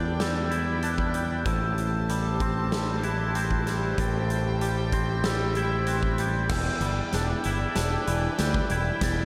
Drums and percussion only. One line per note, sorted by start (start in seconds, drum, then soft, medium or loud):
0.20 snare medium
0.20 closed hi-hat medium
0.51 closed hi-hat soft
0.83 closed hi-hat medium
0.98 kick medium
1.14 closed hi-hat soft
1.46 kick medium
1.46 closed hi-hat medium
1.78 closed hi-hat soft
2.09 closed hi-hat medium
2.40 kick medium
2.40 closed hi-hat soft
2.72 snare medium
2.72 closed hi-hat medium
3.03 closed hi-hat soft
3.35 closed hi-hat medium
3.51 kick medium
3.67 snare soft
3.67 closed hi-hat soft
3.98 kick medium
3.98 closed hi-hat medium
4.30 closed hi-hat soft
4.61 closed hi-hat medium
4.92 kick medium
4.92 closed hi-hat soft
5.24 snare medium
5.24 closed hi-hat medium
5.55 closed hi-hat soft
5.87 closed hi-hat medium
6.03 kick medium
6.18 closed hi-hat soft
6.49 kick medium
6.49 snare soft
6.49 crash loud
6.81 closed hi-hat medium
7.13 snare soft
7.13 closed hi-hat medium
7.44 closed hi-hat medium
7.75 snare medium
7.75 closed hi-hat medium
8.07 closed hi-hat medium
8.39 snare medium
8.39 closed hi-hat medium
8.54 kick medium
8.70 closed hi-hat medium
9.01 kick medium
9.01 snare medium
9.01 closed hi-hat medium